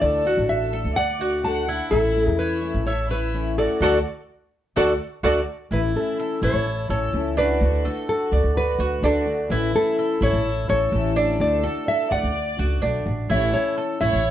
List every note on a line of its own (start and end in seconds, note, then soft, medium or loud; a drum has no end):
0.00 0.36 D2 loud
0.00 0.24 D3 medium
0.00 0.25 A3 medium
0.00 0.25 D4 medium
0.00 0.24 F#4 medium
0.00 0.45 A4 medium
0.00 0.25 D5 medium
0.00 0.46 D5 medium
0.25 0.73 A3 medium
0.25 0.72 D4 medium
0.25 0.72 F#4 medium
0.37 0.83 A1 medium
0.48 0.93 A4 medium
0.48 0.96 E5 medium
0.73 0.96 A3 soft
0.73 0.96 D4 soft
0.73 0.96 F#4 soft
0.73 0.96 A4 medium
0.84 1.76 D2 medium
0.95 1.40 D5 medium
0.95 1.20 D5 medium
0.95 1.41 F#5 loud
0.95 muted steel-string acoustic guitar stroke medium
1.20 1.42 A3 soft
1.20 1.43 D4 soft
1.20 1.43 F#4 soft
1.20 1.67 F#4 medium
1.42 1.66 D3 medium
1.42 1.67 A3 medium
1.42 1.67 D4 medium
1.42 1.66 F#4 medium
1.42 1.88 F#5 medium
1.42 1.89 A5 loud
1.67 1.90 A3 soft
1.67 1.91 D4 soft
1.67 1.91 E4 medium
1.67 1.90 F#4 soft
1.91 2.25 A1 loud
1.91 2.14 E3 medium
1.91 2.14 A3 medium
1.91 2.15 C#4 medium
1.91 2.24 E4 medium
1.91 2.13 E4 medium
1.91 2.38 E4 medium
1.91 2.24 A4 loud
2.15 2.63 A3 medium
2.15 2.61 C#4 medium
2.15 2.61 E4 medium
2.24 2.72 E2 medium
2.24 2.36 D#4 medium
2.24 2.36 G#4 loud
2.38 2.83 E4 medium
2.38 2.86 B4 loud
2.38 2.86 C#5 medium
2.62 2.85 A3 soft
2.62 2.85 C#4 soft
2.62 2.85 E4 medium
2.74 3.66 A1 medium
2.86 3.08 A4 medium
2.86 3.09 C#5 medium
2.86 3.10 E5 medium
2.86 muted steel-string acoustic guitar stroke medium
3.09 3.33 A3 soft
3.09 3.33 C#4 soft
3.09 3.33 E4 soft
3.09 3.54 E4 medium
3.09 3.58 B4 medium
3.09 3.57 C#5 medium
3.34 3.57 E3 medium
3.34 3.57 A3 medium
3.34 3.57 C#4 medium
3.34 3.56 E4 medium
3.57 3.81 A3 soft
3.57 3.81 C#4 soft
3.57 3.80 E4 soft
3.57 3.80 F#4 medium
3.57 3.80 A4 medium
3.57 3.81 D5 medium
3.81 3.99 D2 loud
3.81 3.97 F#3 loud
3.81 3.97 A3 loud
3.81 3.97 D4 medium
3.81 3.97 F#4 loud
3.81 3.97 F#4 medium
3.81 3.98 F#4 medium
3.81 3.97 A4 medium
3.81 3.98 A4 medium
3.81 3.97 D5 medium
3.81 3.97 D5 loud
3.81 3.98 D5 medium
4.76 4.94 D2 medium
4.76 4.92 F#3 medium
4.76 4.92 A3 loud
4.76 4.92 D4 loud
4.76 4.92 F#4 medium
4.76 4.92 A4 medium
4.76 4.92 D5 medium
5.23 5.41 D2 loud
5.23 5.40 F#3 loud
5.23 5.40 A3 medium
5.23 5.40 D4 loud
5.23 5.39 F#4 medium
5.23 5.40 F#4 medium
5.23 5.39 A4 medium
5.23 5.39 D5 medium
5.71 5.94 A1 loud
5.71 5.94 E3 medium
5.71 5.95 A3 medium
5.71 5.95 C#4 medium
5.71 6.18 E4 medium
5.71 5.83 E4 medium
5.71 5.93 E4 medium
5.71 5.80 B4 medium
5.95 6.42 A3 medium
5.95 6.42 C#4 medium
5.95 6.41 E4 medium
5.95 6.40 E4 medium
5.95 6.45 A4 medium
6.20 6.42 A4 medium
6.42 6.53 A1 medium
6.42 6.65 A3 soft
6.42 6.65 C#4 soft
6.42 6.89 E4 medium
6.42 6.65 E4 medium
6.42 6.87 A4 medium
6.42 6.89 C#5 medium
6.54 6.88 A1 medium
6.66 muted steel-string acoustic guitar stroke medium
6.89 7.12 A1 medium
6.89 7.13 A3 soft
6.89 7.13 C#4 soft
6.89 7.12 E4 medium
6.89 7.36 A4 medium
6.89 7.34 A4 medium
6.89 7.34 C#5 medium
7.13 7.59 C#2 medium
7.13 7.36 E3 medium
7.13 7.37 A3 medium
7.13 7.37 C#4 medium
7.13 7.36 E4 medium
7.37 7.60 A3 soft
7.37 7.61 C#4 soft
7.37 7.83 D4 medium
7.37 7.60 E4 medium
7.37 8.05 F#4 medium
7.37 8.09 B4 medium
7.60 7.84 D2 loud
7.60 7.83 D3 medium
7.60 7.84 A3 medium
7.60 7.84 D4 medium
7.60 7.83 F#4 medium
7.84 8.32 A3 medium
7.84 8.32 D4 medium
7.84 8.31 F#4 medium
7.84 8.31 A4 medium
8.08 8.52 F#4 medium
8.08 8.53 A4 medium
8.32 8.43 D2 medium
8.32 8.55 A3 soft
8.32 8.55 D4 soft
8.32 8.55 F#4 medium
8.32 8.78 D5 medium
8.44 8.78 D2 medium
8.55 8.99 F#4 medium
8.55 9.05 B4 loud
8.55 muted steel-string acoustic guitar stroke medium
8.79 9.02 D2 medium
8.79 9.01 A3 soft
8.79 9.02 D4 soft
8.79 9.02 F#4 medium
8.79 9.03 F#4 medium
9.02 9.48 D2 medium
9.02 9.25 D3 medium
9.02 9.26 A3 medium
9.02 9.49 D4 medium
9.02 9.26 D4 medium
9.02 9.36 F#4 medium
9.02 9.25 F#4 medium
9.02 9.37 A4 medium
9.26 9.49 A3 soft
9.26 9.50 D4 soft
9.26 9.49 F#4 medium
9.50 9.73 A1 loud
9.50 9.73 E3 medium
9.50 9.73 A3 medium
9.50 9.73 C#4 medium
9.50 9.73 E4 medium
9.50 9.97 E4 medium
9.50 9.72 E4 medium
9.50 9.75 B4 loud
9.73 10.21 A3 medium
9.73 10.20 C#4 medium
9.73 10.19 E4 medium
9.73 10.18 E4 medium
9.73 10.23 A4 medium
9.99 10.21 A4 medium
10.20 10.32 A1 medium
10.20 10.44 A3 soft
10.20 10.44 C#4 medium
10.20 10.44 E4 medium
10.20 10.68 E4 loud
10.20 10.66 A4 medium
10.20 10.69 C#5 medium
10.33 10.67 A1 medium
10.44 muted steel-string acoustic guitar stroke medium
10.68 10.91 A1 medium
10.68 10.92 A3 soft
10.68 10.92 C#4 soft
10.68 10.91 E4 medium
10.68 11.15 A4 medium
10.68 11.36 A4 medium
10.68 11.36 C#5 loud
10.92 11.37 A1 loud
10.92 11.15 E3 medium
10.92 11.16 A3 medium
10.92 11.16 C#4 medium
10.92 11.15 E4 medium
11.16 11.40 A3 soft
11.16 11.40 C#4 soft
11.16 11.62 D4 medium
11.16 11.39 E4 soft
11.40 11.62 D2 loud
11.40 11.63 D3 medium
11.40 11.63 A3 medium
11.40 11.63 D4 medium
11.40 11.62 F#4 medium
11.40 11.85 A4 medium
11.40 11.88 D5 loud
11.63 12.11 A3 medium
11.63 12.11 D4 medium
11.63 12.10 F#4 medium
11.63 12.09 A4 medium
11.88 12.10 A4 medium
11.88 12.10 E5 loud
12.11 12.22 D2 medium
12.11 12.34 A3 soft
12.11 12.34 D4 soft
12.11 12.34 F#4 medium
12.11 12.57 D5 medium
12.11 13.02 D5 loud
12.11 13.02 F#5 medium
12.23 12.57 D2 medium
12.35 muted steel-string acoustic guitar stroke medium
12.57 12.80 C#2 medium
12.57 12.81 A3 soft
12.57 12.81 D4 soft
12.57 12.81 F#4 soft
12.57 12.82 F#4 medium
12.81 13.04 B1 medium
12.81 13.05 D3 medium
12.81 13.05 A3 medium
12.81 13.28 D4 medium
12.81 13.05 D4 medium
12.81 13.05 F#4 medium
13.06 13.27 A1 medium
13.06 13.29 A3 soft
13.06 13.29 D4 soft
13.06 13.29 F#4 medium
13.29 13.52 A1 loud
13.29 13.52 E3 medium
13.29 13.52 A3 medium
13.29 13.53 C#4 medium
13.29 13.76 E4 medium
13.29 13.52 E4 medium
13.29 13.52 C#5 medium
13.29 13.55 E5 medium
13.53 14.01 A3 medium
13.53 14.00 C#4 medium
13.53 13.99 E4 medium
13.53 13.98 A4 medium
13.53 14.02 C#5 medium
13.78 14.00 A4 medium
14.00 14.12 A1 medium
14.00 14.24 A3 soft
14.00 14.24 C#4 soft
14.00 14.23 E4 medium
14.00 14.31 E4 medium
14.00 14.31 C#5 loud
14.00 14.31 E5 loud
14.13 14.31 A1 medium
14.25 muted steel-string acoustic guitar stroke medium